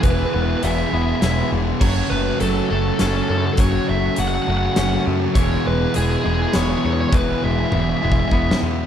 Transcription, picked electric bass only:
X:1
M:3/4
L:1/8
Q:1/4=102
K:E
V:1 name="Picked electric bass" clef=bass
E,,, E,,, E,,, E,,, E,,, E,,, | F,,, F,,, F,,, F,,, F,,, F,, | F,,, F,,, F,,, F,,, F,,, F,, | E,,, E,,, E,,, E,,, E,,, E,, |
E,,, E,,, E,,, E,,, E,,, E,, |]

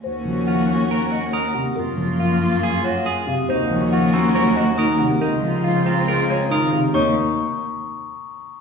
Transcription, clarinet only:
X:1
M:4/4
L:1/8
Q:1/4=139
K:Ebdor
V:1 name="Clarinet"
G G G G G G G z | F F F F F F F z | G G G G G G G z | F F F F F F F z |
z8 |]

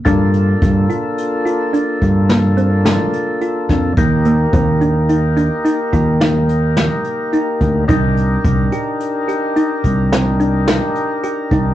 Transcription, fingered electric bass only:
X:1
M:7/4
L:1/8
Q:1/4=107
K:Gm
V:1 name="Fingered electric bass" clef=bass
G,,2 G,, z4 G,,4 z2 F,, | E,,2 E,,4 z E,,4 z2 D,, | C,,2 C,, z4 C,,4 z2 C,, |]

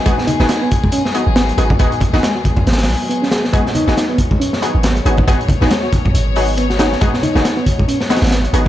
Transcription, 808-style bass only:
X:1
M:4/4
L:1/16
Q:"Swing 16ths" 1/4=138
K:G#m
V:1 name="808-style bass" clef=bass
G,,, z2 G,,, z6 z G,,,2 z G,,, z | G,,, z2 G,,, z4 G,,,2 B,,, z4 z | G,,, z2 G,,, z6 z G,,,2 z G,,, z | G,,, z2 G,,, z4 G,,,6- G,,, z |
G,,, z2 G,,, z6 z G,,,2 z G,,, z |]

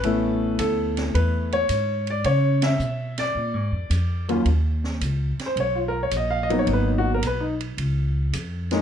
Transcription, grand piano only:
X:1
M:4/4
L:1/16
Q:"Swing" 1/4=109
K:Amix
V:1 name="Grand piano"
B4 A4 B2 c4 d2 | c2 e4 d8 z2 | [K:Ebm] z6 z =c d F B d e f e d | c E G B c E z8 z2 |]
V:2 name="Grand piano"
[A,B,CE]8- [A,B,CE]2 z6 | z12 z2 [^D,,F,^A,C^E]2 | [K:Ebm] z12 z2 [G,B,CE]2- | [G,B,CE]4 z8 z2 [A,B,DE]2 |]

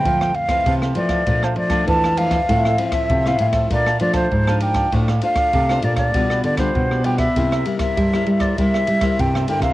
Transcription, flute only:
X:1
M:4/4
L:1/16
Q:1/4=98
K:F
V:1 name="Flute"
g2 f4 d3 c d2 a2 f2- | f3 e2 f f2 d2 d c3 g2 | z2 f4 d d3 d c3 g e- | e3 e4 d e4 g2 g f |]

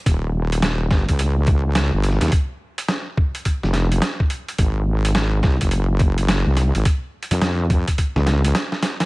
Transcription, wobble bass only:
X:1
M:4/4
L:1/16
Q:"Swing 16ths" 1/4=106
K:Ebmix
V:1 name="Wobble bass" clef=bass
E,,,6 G,,, D,,6 G,,,2 E,, | z8 z F,,,3 z4 | A,,,6 C,, _G,,,6 C,,2 A,,, | z3 F,, F,,3 z2 D,,3 z4 |]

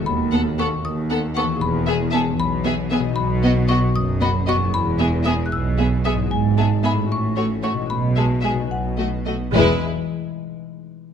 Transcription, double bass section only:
X:1
M:6/8
L:1/8
Q:3/8=76
K:E
V:1 name="Double bass section" clef=bass
D,,3 D,,3 | E,,,3 B,,,3 | B,,,3 F,,,3 | E,,,3 B,,,3 |
G,,,3 A,,,3 | B,,,3 B,,,3 | E,,, z4 z |]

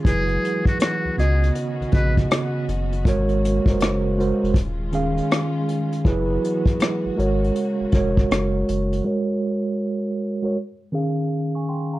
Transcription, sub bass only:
X:1
M:4/4
L:1/16
Q:"Swing 16ths" 1/4=80
K:Ebdor
V:1 name="Sub bass" clef=bass
G,,,2 z3 D,, D,,2 z B,,, B,,,2 z2 G,,,2 | A,,,3 G,,,4 F,,, E,,,4 z4 | G,,,2 z3 A,,, A,,,2 z F,,, F,,,2 G,,,2 G,,,2 | z16 |]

